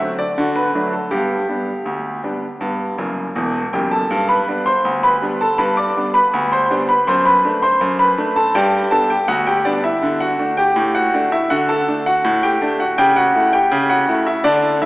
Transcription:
Already playing: E5
0.01 F#3 A3 C4
0.19 D5
0.38 D3 F#4
0.56 B4
0.74 F#3 A3 D4
0.93 A4
1.11 G2 B3 G4
1.48 G3 B3 D4
1.86 D2
2.23 G3 B3 D4
2.61 G2 B3
2.98 F#1 F#2
3.36 E1 E2
3.73 F#1 F#2 G4 G5
3.91 A4 A5
4.11 G2
4.29 B4 B5
4.48 G3 B3 D4
4.66 C5 C6
4.85 D2
5.03 B4 B5
5.22 G3 B3 D4
5.41 A4 A5
5.58 G2 B4 B5
5.77 D5 D6
5.96 G3 B3 D4
6.14 B4 B5
6.33 D2
6.52 C5 C6
6.70 G3 B3 D4
6.89 B4 B5
7.07 F#2 C5 C6
7.25 B4 B5
7.44 A3 D4
7.62 C5 C6
7.81 F#2
7.99 B4 B5
8.18 A3 D4
8.36 A4 A5
8.55 G2 G4 D5 G5
8.91 G3 B3 D4 A4 A5
9.10 G4 G5
9.28 D2 F#4 F#5
9.47 G4 G5
9.65 G3 B3 D4 D5
9.84 E4 E5
10.02 D3
10.20 F#4 F#5
10.39 A3 D4
10.57 G4 G5
10.76 A2
10.95 F#4 F#5
11.14 A3 D4
11.32 E4 E5
11.50 D3 F#4 F#5
11.69 A4 A5
11.88 A3 D4
12.06 F#4 F#5
12.24 A2
12.43 G4 G5
12.62 A3 D4
12.80 F#4 F#5
12.98 C#3 G4 G5
13.16 F#4 F#5
13.35 A3 E4
13.53 G4 G5
13.72 C#3
13.90 F#4 F#5
14.09 A3 E4
14.27 E4 E5
14.44 D3 D4 A4 D5
14.82 F#3 E5

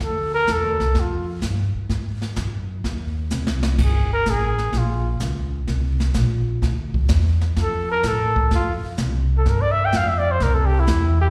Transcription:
0.00 D2 A4, brush sweep, kick, snare
0.34 A#4
0.47 E2, kick, snare, hi-hat pedal
0.52 A4
0.63 D2
0.80 C2, snare
0.95 F2, brush sweep, kick, snare
1.00 F4
1.41 G2, kick, snare, hi-hat pedal
1.75 muted upright bass stroke
1.89 G#2, brush sweep, kick, snare
2.22 snare
2.36 F#2, kick, snare, hi-hat pedal
2.84 D#2, brush sweep, kick, snare
3.31 C2, snare, hi-hat pedal
3.47 snare
3.63 snare
3.78 G1, brush sweep, kick, snare, crash
3.84 G#4
4.13 A#4
4.25 A1, kick, snare, hi-hat pedal
4.30 G#4
4.58 snare
4.72 A#1, brush sweep, kick, snare
4.78 F4
5.20 C#2, kick, snare, hi-hat pedal
5.67 C2, brush sweep, kick, snare
6.00 snare
6.14 A#1, kick, snare, hi-hat pedal
6.62 D2, brush sweep, kick, snare
6.94 kick
7.08 E2, snare, hi-hat pedal
7.41 snare
7.56 F2, brush sweep, kick, snare
7.62 A4
7.91 A#4
8.03 A2, kick, snare, hi-hat pedal
8.07 A4
8.36 kick
8.51 F2, brush sweep, snare
8.55 F4
8.84 muted upright bass stroke
8.97 C2, kick, snare, hi-hat pedal
9.38 A4
9.45 G2, brush sweep, kick, snare
9.50 A#4
9.61 D5
9.72 E5
9.85 G5
9.92 F2, kick, snare, hi-hat pedal
9.97 F5
10.09 E5
10.18 D5
10.31 C5
10.40 C2 A#4, brush sweep, kick, snare
10.54 A4
10.66 G4
10.80 E4
10.87 E2, kick, snare, hi-hat pedal
11.21 G4

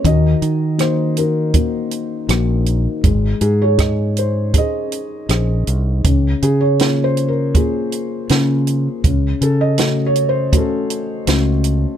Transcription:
0.05 D#2 D#3 F#4 A#4 D#5, kick, closed hi-hat
0.42 D#3, closed hi-hat
0.78 A#3 D#4 F#4 C5, cross-stick, closed hi-hat
1.17 D#4 F#4 A#4, closed hi-hat
1.54 A#3 D#4 F#4, kick, closed hi-hat
1.91 closed hi-hat
2.28 A#1 A#3 D#4 F#4, cross-stick, closed hi-hat
2.66 closed hi-hat
3.03 G#1 G#3, kick, closed hi-hat
3.41 G#2 G#4, closed hi-hat
3.62 G#4 C#5
3.78 D#4 G#4 D#5, kick, cross-stick, closed hi-hat
4.17 C5, closed hi-hat
4.54 D#4 G#4 C5, kick, closed hi-hat
4.58 G#4 C5 D#5
4.92 closed hi-hat
5.29 A#1 D#4 G#4 C5, cross-stick, closed hi-hat
5.67 C2, closed hi-hat
6.04 C#2 C#3, kick, closed hi-hat
6.42 C#3 G#4, closed hi-hat
6.61 C#5
6.79 A#3 C#4 F4, snare, closed hi-hat
7.04 C5
7.17 closed hi-hat
7.28 A#4
7.55 A#3 C#4 F4 G#4, kick, closed hi-hat
7.60 F4
7.92 closed hi-hat
8.29 C#3 A#3 C#4 F4, snare, closed hi-hat
8.67 closed hi-hat
9.04 C#2 C#3, kick, closed hi-hat
9.41 C#3 A4, closed hi-hat
9.61 D#5
9.78 A3 C#4 F#4, snare, closed hi-hat
10.06 C#5
10.16 closed hi-hat
10.29 C5
10.52 A3 C#4 F#4, kick, closed hi-hat
10.57 C#4 F#4 A4
10.90 closed hi-hat
11.27 C#2 A3 C#4 F#4, snare, closed hi-hat
11.64 closed hi-hat

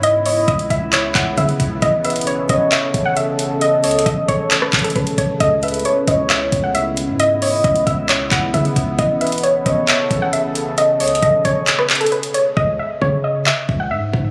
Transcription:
Already playing: G#2 C#3 B3 E4
0.03 D#5, closed hi-hat
0.26 C#5 D#5, open hi-hat
0.48 C#2 D#5, kick, closed hi-hat
0.59 closed hi-hat
0.70 C#2 E5, kick, closed hi-hat
0.93 C#5, clap, closed hi-hat
1.15 C#2 F#5, kick, clap, closed hi-hat
1.37 C#3 E5, kick, closed hi-hat
1.49 closed hi-hat
1.60 C#2, kick, closed hi-hat
1.82 A1 A4 D#5, kick, closed hi-hat
2.05 B4 E5, closed hi-hat
2.10 closed hi-hat
2.16 closed hi-hat
2.21 closed hi-hat
2.27 C#5, closed hi-hat
2.49 A1 C#5 D#5, kick, closed hi-hat
2.72 E5, clap, closed hi-hat
2.94 A1, kick, closed hi-hat
3.05 F#5
3.17 E5, closed hi-hat
3.39 closed hi-hat
3.61 A3 D#5, closed hi-hat
3.84 C#2 C#5 D#5, closed hi-hat, open hi-hat
3.91 closed hi-hat
3.99 closed hi-hat
4.06 A1 D#5, kick, closed hi-hat
4.28 A1 C#5, kick, closed hi-hat
4.51 clap, closed hi-hat
4.62 G#1 B4, cross-stick
4.73 A1, kick, clap, closed hi-hat
4.79 closed hi-hat
4.84 A4, closed hi-hat
4.90 closed hi-hat
4.96 A1 B4, kick, closed hi-hat
5.07 closed hi-hat
5.18 A1 C#5, kick, closed hi-hat
5.40 C#2 B3 E4 D#5, kick, closed hi-hat
5.63 B4 E5, closed hi-hat
5.68 closed hi-hat
5.74 closed hi-hat
5.79 closed hi-hat
5.85 C#5, closed hi-hat
6.08 C#2 C#5 D#5, kick, closed hi-hat
6.30 E5, clap, closed hi-hat
6.52 C#2, kick, closed hi-hat
6.64 F#5
6.75 E5, closed hi-hat
6.97 closed hi-hat
7.08 G#2
7.20 D#5, closed hi-hat
7.42 C#5 D#5, open hi-hat
7.64 C#2 D#5, kick, closed hi-hat
7.76 closed hi-hat
7.87 C#2 E5, kick, closed hi-hat
8.09 C#5, clap, closed hi-hat
8.31 C#2 F#5, kick, clap, closed hi-hat
8.54 C#3 E5, kick, closed hi-hat
8.65 closed hi-hat
8.76 C#2, kick, closed hi-hat
8.99 A1 C#3 A4 D#5, kick, closed hi-hat
9.21 B4 E5, closed hi-hat
9.27 closed hi-hat
9.32 closed hi-hat
9.38 closed hi-hat
9.43 C#5, closed hi-hat
9.65 A1 C#5 D#5, kick, closed hi-hat
9.88 E5, clap, closed hi-hat
10.11 A1, kick, closed hi-hat
10.22 F#5
10.33 E5, closed hi-hat
10.55 closed hi-hat
10.78 G#4 D#5, closed hi-hat
11.00 C#2 C#5 D#5, closed hi-hat, open hi-hat
11.08 closed hi-hat
11.15 closed hi-hat
11.22 A1 D#5, kick, closed hi-hat
11.45 A1 C#5, kick, closed hi-hat
11.67 clap, closed hi-hat
11.79 B4, cross-stick
11.90 clap, closed hi-hat
11.95 closed hi-hat
12.01 A4, closed hi-hat
12.06 closed hi-hat
12.12 B4, closed hi-hat
12.23 closed hi-hat
12.34 C#5, closed hi-hat
12.57 C#2 D#5, kick
12.79 E5
13.01 C#3 C#5, kick
13.24 D#5
13.46 E5, clap
13.69 C#2, kick
13.80 F#5
13.91 G#2 E5
14.13 G#2, kick

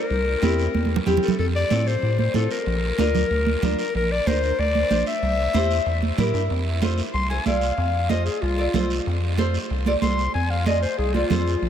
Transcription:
Already playing: A#4
0.10 C2, long guiro
0.42 E2 C4 E4 G4, high conga, short guiro
0.59 short guiro
0.75 E2, high conga, long guiro
0.85 high conga
0.96 low conga
1.06 E2 C4 E4 G4, low conga, short guiro
1.17 low conga
1.23 A4, short guiro
1.28 low conga
1.39 F2 A4, long guiro
1.55 D5
1.70 A2 C4 F4 A4, high conga, short guiro
1.87 C5, short guiro
2.02 A2, long guiro
2.19 C5, high conga
2.34 A2 C4 F4 A4, high conga, short guiro
2.51 A#4, short guiro
2.66 A#1, long guiro
2.98 D2 D4 F4 A#4, high conga, short guiro
3.15 low conga, short guiro
3.31 D2, long guiro
3.46 high conga
3.62 D2 D4 F4 A#4, high conga, low conga, short guiro
3.79 A#4, short guiro
3.95 A#1 A#4, long guiro
4.12 D5
4.27 D2 D4 F4 A#4 C5, high conga, short guiro
4.43 short guiro
4.59 D2 D5, long guiro
4.75 high conga
4.90 A#1 D4 F4 C5, high conga, short guiro
5.06 E5, short guiro
5.22 C2, long guiro
5.54 E2 E4 G4 C5, high conga, short guiro
5.71 short guiro
5.86 E2, long guiro
6.03 high conga
6.18 A2 E4 G4 A#4, high conga, low conga, short guiro
6.34 G2, short guiro
6.50 F2, long guiro
6.81 F4 A4 C5, high conga, short guiro
6.98 short guiro
7.14 C2 C6, long guiro
7.30 F4 A4 C5 G#5
7.46 C2 F4 A4 D5 F5, high conga, short guiro
7.61 short guiro
7.78 F2, long guiro
8.09 F4 A4 C5 D#5, high conga, short guiro
8.26 G#4, short guiro
8.42 C2 F4, long guiro
8.58 F4 A4 D5
8.74 C2 F4 A4 C5, high conga, low conga, short guiro
8.90 short guiro
9.06 F2, long guiro
9.38 F4 A4 C5, high conga, short guiro
9.54 short guiro
9.70 C2, long guiro
9.86 F4 A4 D5, high conga
10.02 C2 F4 A4 C5 C6, high conga, short guiro
10.18 short guiro
10.34 F2 G#5, long guiro
10.50 F5
10.66 F4 A4 D5 D#5, high conga, short guiro
10.82 C5, short guiro
10.98 C2 G#4, long guiro
11.14 F4 A4 D5, high conga
11.30 F2 F4 A4 C5, high conga, low conga, short guiro
11.47 short guiro
11.62 A#1, long guiro

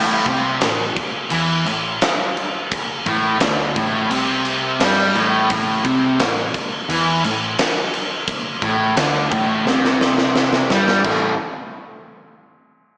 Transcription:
Already playing: A1 A2
0.25 C2 C3, kick, crash
0.61 A1 A2, snare, crash
0.96 kick, crash
1.30 E2 E3, crash
1.66 A1 A2, crash
2.01 snare, crash
2.37 crash
2.71 kick, crash
3.06 A1 A2, kick, crash
3.39 D2 D3, snare, crash
3.76 A1 A2, kick, crash
4.10 C2 C3, crash
4.45 crash
4.79 G2 G3, snare, crash
5.15 A1 A2, crash
5.50 A1 A2, kick, crash
5.84 C2 C3, kick, crash
6.19 A1 A2, snare, crash
6.54 kick, crash
6.89 E2 E3, crash
7.24 A1 A2, crash
7.59 snare, crash
7.94 crash
8.27 kick, crash
8.62 A1 A2, kick, crash
8.97 D2 D3, snare, crash
9.32 A1 A2, kick, crash
9.65 C2 C3, snare
9.85 snare
10.01 snare
10.18 snare
10.36 snare
10.53 snare
10.70 G2 G3, snare
10.88 snare
11.04 A1 A2 E3 A3 C4 E4 A4, kick, crash

